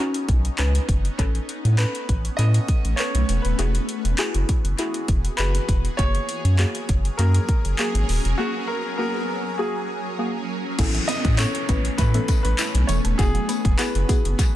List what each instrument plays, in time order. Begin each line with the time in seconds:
Already playing: ambient pad B3 C#4 D#4
0.00 synth pluck C#4 D#4 F#4
0.14 closed hi-hat
0.29 sub bass B1, kick, closed hi-hat
0.45 closed hi-hat
0.58 sub bass C#2, synth pluck C#4 D#4 B4, clap, closed hi-hat
0.75 closed hi-hat
0.89 sub bass F#1, kick, closed hi-hat
1.05 closed hi-hat
1.18 sub bass A1, ambient pad A3 C#4, synth pluck C#4 A4 B4, kick, closed hi-hat
1.35 closed hi-hat
1.49 closed hi-hat
1.65 sub bass A2, closed hi-hat
1.77 synth pluck C#4 A4 B4, grand piano B4, clap, closed hi-hat
1.95 closed hi-hat
2.09 sub bass A1, kick, closed hi-hat
2.25 closed hi-hat
2.37 sub bass A2, synth pluck C#4 A4 B4, grand piano D#5, closed hi-hat
2.54 closed hi-hat
2.68 kick, closed hi-hat
2.85 sub bass A1, closed hi-hat
2.96 synth pluck C#4 A4 B4, grand piano C#5, clap, closed hi-hat
3.14 sub bass B1, closed hi-hat
3.29 sub bass E1, closed hi-hat
3.42 sub bass D#1, grand piano B4, closed hi-hat
3.59 sub bass E1, ambient pad E3 F#4 G#4, synth pluck E4 F#4 G#4, closed hi-hat
3.75 closed hi-hat
3.89 closed hi-hat
4.04 sub bass E1, closed hi-hat
4.18 synth pluck E4 F#4 G#4, clap, closed hi-hat
4.34 sub bass F#1, closed hi-hat
4.49 kick, closed hi-hat
4.64 sub bass F#1, closed hi-hat
4.79 synth pluck E4 F#4 G#4, closed hi-hat
4.94 closed hi-hat
5.08 sub bass E1, kick, closed hi-hat
5.25 closed hi-hat
5.37 sub bass F#1, synth pluck E4 F#4 G#4, grand piano B4, clap, closed hi-hat
5.55 closed hi-hat
5.69 sub bass E1, kick, closed hi-hat
5.85 closed hi-hat
5.97 sub bass F#1, ambient pad F#3 C#4 A#4, synth pluck A#3 F#4 G#4, grand piano C#5, kick, closed hi-hat, swell
6.15 closed hi-hat
6.29 closed hi-hat
6.44 sub bass F#2, closed hi-hat
6.59 synth pluck A#3 F#4 G#4, clap, closed hi-hat
6.75 closed hi-hat
6.89 sub bass F#1, kick, closed hi-hat
7.05 closed hi-hat
7.17 sub bass F#2, synth pluck A#3 F#4 G#4, grand piano A#4, closed hi-hat
7.34 closed hi-hat
7.49 kick, closed hi-hat
7.65 sub bass F#1, closed hi-hat
7.77 synth pluck A#3 F#4 G#4, grand piano G#4, clap, closed hi-hat
7.94 sub bass G#1, closed hi-hat
8.09 sub bass D#1, open hi-hat
8.25 sub bass E1, closed hi-hat
8.38 synth pluck A#3 F#4 G#4, grand piano F#4
8.68 grand piano A#4
8.98 synth pluck A#3 F#4 G#4, grand piano A#4
9.58 synth pluck A#3 F#4 G#4, grand piano G#4
10.19 synth pluck A#3 F#4 G#4
10.78 sub bass A1, synth arpeggio sound E3, ambient pad A3 B3 C#4, synth pluck B3 C#4 E4 A4, kick, closed hi-hat, crash, tambourine, downlifter
10.95 synth arpeggio sound E3, closed hi-hat
11.08 synth arpeggio sound B3, grand piano D#5, closed hi-hat, tambourine
11.25 sub bass A2, kick, closed hi-hat
11.38 synth pluck B3 C#4 E4 A4, synth arpeggio sound E4, grand piano C#5, clap, closed hi-hat, tambourine
11.55 closed hi-hat
11.69 sub bass A1, synth pluck B3 C#4 E4 B4, kick, closed hi-hat, tambourine
11.85 closed hi-hat
11.98 sub bass A2, synth arpeggio sound E3, grand piano B4, kick, closed hi-hat, tambourine
12.14 synth arpeggio sound E3, synth pluck B3 C#4 E4 A4, closed hi-hat
12.28 synth arpeggio sound B3, kick, closed hi-hat, tambourine
12.43 sub bass A1, synth arpeggio sound C#4, grand piano B4, closed hi-hat
12.58 synth arpeggio sound E4, clap, closed hi-hat, tambourine
12.74 sub bass B1, closed hi-hat
12.87 sub bass E1, synth arpeggio sound E3, grand piano C#5, closed hi-hat, tambourine
13.05 sub bass D#1, synth arpeggio sound A3, closed hi-hat
13.18 sub bass E1, ambient pad E3 F#4 G#4, synth arpeggio sound F#3, synth pluck B3 E4 F#4 G#4, grand piano G#4, kick, closed hi-hat, tambourine
13.35 synth arpeggio sound F#3, closed hi-hat
13.49 synth arpeggio sound B3, closed hi-hat, tambourine
13.65 sub bass E1, kick, closed hi-hat
13.78 synth pluck B3 E4 F#4 G#4, synth arpeggio sound F#4, grand piano B4, clap, closed hi-hat, tambourine
13.95 sub bass F#1, closed hi-hat
14.09 synth pluck B3 E4 F#4 G#4, kick, closed hi-hat, tambourine
14.25 sub bass F#1, closed hi-hat
14.39 synth arpeggio sound F#3, kick, closed hi-hat, tambourine